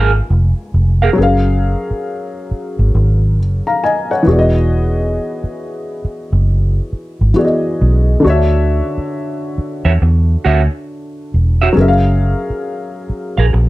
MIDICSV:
0, 0, Header, 1, 6, 480
1, 0, Start_track
1, 0, Tempo, 882353
1, 636, Time_signature, 4, 2, 24, 8
1, 7448, End_track
2, 0, Start_track
2, 0, Title_t, "Clean electric guitar"
2, 0, Program_c, 0, 27
2, 0, Note_on_c, 0, 70, 80
2, 0, Note_on_c, 0, 77, 88
2, 57, Note_off_c, 0, 70, 0
2, 60, Note_off_c, 0, 77, 0
2, 555, Note_on_c, 0, 77, 62
2, 560, Note_on_c, 0, 70, 61
2, 564, Note_on_c, 0, 68, 51
2, 593, Note_off_c, 0, 77, 0
2, 595, Note_off_c, 0, 70, 0
2, 597, Note_off_c, 0, 68, 0
2, 5358, Note_on_c, 0, 76, 58
2, 5360, Note_on_c, 0, 73, 51
2, 5365, Note_on_c, 0, 66, 48
2, 5394, Note_off_c, 0, 76, 0
2, 5395, Note_off_c, 0, 73, 0
2, 5398, Note_off_c, 0, 66, 0
2, 5683, Note_on_c, 0, 66, 79
2, 5688, Note_on_c, 0, 73, 75
2, 5693, Note_on_c, 0, 76, 80
2, 5770, Note_off_c, 0, 66, 0
2, 5773, Note_off_c, 0, 73, 0
2, 5775, Note_off_c, 0, 76, 0
2, 6319, Note_on_c, 0, 76, 59
2, 6322, Note_on_c, 0, 73, 54
2, 6326, Note_on_c, 0, 66, 51
2, 6355, Note_off_c, 0, 76, 0
2, 6356, Note_off_c, 0, 73, 0
2, 6358, Note_off_c, 0, 66, 0
2, 7276, Note_on_c, 0, 77, 57
2, 7284, Note_on_c, 0, 70, 54
2, 7285, Note_on_c, 0, 68, 46
2, 7313, Note_off_c, 0, 77, 0
2, 7317, Note_off_c, 0, 70, 0
2, 7318, Note_off_c, 0, 68, 0
2, 7448, End_track
3, 0, Start_track
3, 0, Title_t, "Upright piano"
3, 0, Program_c, 1, 0
3, 0, Control_c, 1, 64, 127
3, 616, Note_on_c, 1, 54, 68
3, 629, Note_on_c, 1, 61, 65
3, 642, Note_on_c, 1, 68, 64
3, 644, Control_c, 1, 64, 0
3, 656, Note_on_c, 1, 70, 62
3, 668, Note_on_c, 1, 77, 76
3, 734, Control_c, 1, 64, 127
3, 1830, Note_off_c, 1, 77, 0
3, 1996, Note_on_c, 1, 82, 56
3, 2000, Note_on_c, 1, 77, 50
3, 2076, Note_off_c, 1, 82, 0
3, 2078, Note_off_c, 1, 77, 0
3, 2087, Note_on_c, 1, 80, 65
3, 2092, Note_on_c, 1, 75, 60
3, 2227, Note_off_c, 1, 80, 0
3, 2229, Note_off_c, 1, 75, 0
3, 2236, Note_on_c, 1, 78, 62
3, 2237, Note_on_c, 1, 73, 51
3, 2284, Note_off_c, 1, 54, 0
3, 2291, Note_off_c, 1, 61, 0
3, 2297, Note_off_c, 1, 68, 0
3, 2299, Note_on_c, 1, 52, 72
3, 2305, Note_off_c, 1, 70, 0
3, 2312, Note_on_c, 1, 59, 66
3, 2324, Control_c, 1, 64, 0
3, 2325, Note_on_c, 1, 66, 64
3, 2336, Note_on_c, 1, 68, 68
3, 2352, Note_on_c, 1, 74, 62
3, 2379, Note_off_c, 1, 74, 0
3, 2387, Note_on_c, 1, 75, 82
3, 2431, Control_c, 1, 64, 127
3, 2461, Note_off_c, 1, 73, 0
3, 2461, Note_off_c, 1, 78, 0
3, 3966, Note_off_c, 1, 52, 0
3, 3972, Note_off_c, 1, 59, 0
3, 3979, Note_off_c, 1, 66, 0
3, 3984, Note_off_c, 1, 68, 0
3, 3992, Note_on_c, 1, 52, 55
3, 3998, Note_on_c, 1, 59, 49
3, 4004, Note_on_c, 1, 66, 51
3, 4010, Note_off_c, 1, 75, 0
3, 4011, Note_on_c, 1, 68, 51
3, 4018, Note_on_c, 1, 74, 50
3, 4052, Note_off_c, 1, 74, 0
3, 4052, Note_on_c, 1, 75, 59
3, 4460, Note_on_c, 1, 50, 69
3, 4473, Note_on_c, 1, 62, 65
3, 4474, Note_off_c, 1, 52, 0
3, 4477, Note_off_c, 1, 59, 0
3, 4477, Note_off_c, 1, 66, 0
3, 4484, Note_off_c, 1, 68, 0
3, 4484, Control_c, 1, 64, 0
3, 4485, Note_on_c, 1, 66, 65
3, 4499, Note_on_c, 1, 73, 64
3, 4504, Note_off_c, 1, 75, 0
3, 4513, Note_on_c, 1, 76, 78
3, 4567, Control_c, 1, 64, 127
3, 6366, Note_off_c, 1, 50, 0
3, 6373, Note_off_c, 1, 62, 0
3, 6379, Note_off_c, 1, 66, 0
3, 6379, Note_on_c, 1, 54, 68
3, 6386, Note_off_c, 1, 73, 0
3, 6392, Note_on_c, 1, 61, 66
3, 6393, Note_off_c, 1, 76, 0
3, 6403, Control_c, 1, 64, 0
3, 6403, Note_on_c, 1, 68, 65
3, 6418, Note_on_c, 1, 70, 68
3, 6428, Note_on_c, 1, 76, 68
3, 6457, Note_off_c, 1, 76, 0
3, 6464, Note_on_c, 1, 77, 75
3, 6502, Control_c, 1, 64, 127
3, 7448, Note_off_c, 1, 54, 0
3, 7448, Note_off_c, 1, 61, 0
3, 7448, Note_off_c, 1, 68, 0
3, 7448, Note_off_c, 1, 70, 0
3, 7448, Note_off_c, 1, 77, 0
3, 7448, End_track
4, 0, Start_track
4, 0, Title_t, "Fingered electric bass"
4, 0, Program_c, 2, 33
4, 0, Note_on_c, 2, 32, 90
4, 109, Note_off_c, 2, 32, 0
4, 165, Note_on_c, 2, 29, 88
4, 281, Note_off_c, 2, 29, 0
4, 403, Note_on_c, 2, 29, 90
4, 588, Note_off_c, 2, 29, 0
4, 644, Note_on_c, 2, 30, 92
4, 948, Note_off_c, 2, 30, 0
4, 1517, Note_on_c, 2, 32, 84
4, 1583, Note_off_c, 2, 32, 0
4, 1603, Note_on_c, 2, 32, 90
4, 1846, Note_off_c, 2, 32, 0
4, 1846, Note_on_c, 2, 30, 84
4, 1962, Note_off_c, 2, 30, 0
4, 2326, Note_on_c, 2, 28, 92
4, 2817, Note_off_c, 2, 28, 0
4, 3441, Note_on_c, 2, 30, 78
4, 3692, Note_off_c, 2, 30, 0
4, 3922, Note_on_c, 2, 32, 78
4, 3985, Note_off_c, 2, 32, 0
4, 4251, Note_on_c, 2, 35, 88
4, 4433, Note_off_c, 2, 35, 0
4, 4490, Note_on_c, 2, 38, 105
4, 4791, Note_off_c, 2, 38, 0
4, 5359, Note_on_c, 2, 40, 83
4, 5424, Note_off_c, 2, 40, 0
4, 5450, Note_on_c, 2, 40, 88
4, 5632, Note_off_c, 2, 40, 0
4, 5689, Note_on_c, 2, 38, 88
4, 5803, Note_off_c, 2, 38, 0
4, 6169, Note_on_c, 2, 28, 81
4, 6352, Note_off_c, 2, 28, 0
4, 6405, Note_on_c, 2, 30, 93
4, 6709, Note_off_c, 2, 30, 0
4, 7279, Note_on_c, 2, 34, 86
4, 7344, Note_off_c, 2, 34, 0
4, 7365, Note_on_c, 2, 34, 91
4, 7448, Note_off_c, 2, 34, 0
4, 7448, End_track
5, 0, Start_track
5, 0, Title_t, "Muted clean electric guitar strokes"
5, 5452, Note_on_c, 9, 29, 35
5, 5506, Note_off_c, 9, 29, 0
5, 7361, Note_on_c, 9, 29, 33
5, 7415, Note_off_c, 9, 29, 0
5, 7448, End_track
6, 0, Start_track
6, 0, Title_t, "Muted fingered electric bass strokes"
6, 1037, Note_on_c, 9, 29, 43
6, 1091, Note_off_c, 9, 29, 0
6, 1367, Note_on_c, 9, 29, 43
6, 1421, Note_off_c, 9, 29, 0
6, 2958, Note_on_c, 9, 29, 41
6, 3012, Note_off_c, 9, 29, 0
6, 3289, Note_on_c, 9, 29, 44
6, 3343, Note_off_c, 9, 29, 0
6, 3768, Note_on_c, 9, 29, 43
6, 3822, Note_off_c, 9, 29, 0
6, 4883, Note_on_c, 9, 29, 43
6, 4937, Note_off_c, 9, 29, 0
6, 5211, Note_on_c, 9, 29, 46
6, 5266, Note_off_c, 9, 29, 0
6, 6800, Note_on_c, 9, 29, 40
6, 6854, Note_off_c, 9, 29, 0
6, 7124, Note_on_c, 9, 29, 43
6, 7178, Note_off_c, 9, 29, 0
6, 7448, End_track
0, 0, End_of_file